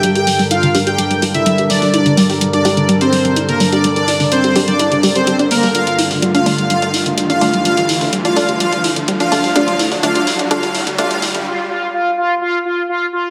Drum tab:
HH |xxooxxoxxxoxxxoo|xxooxxoxxxoxxxox|xxooxxoxxxoxxxoo|xxooxxoxxxoxxxox|
T2 |----------------|----------------|----------------|-o-o-----o------|

HH |xxooxxoxxxoxxxoo|xxooxxoxxxoxxxox|----------------|
T2 |-o-o------------|-o-o-----o------|----------------|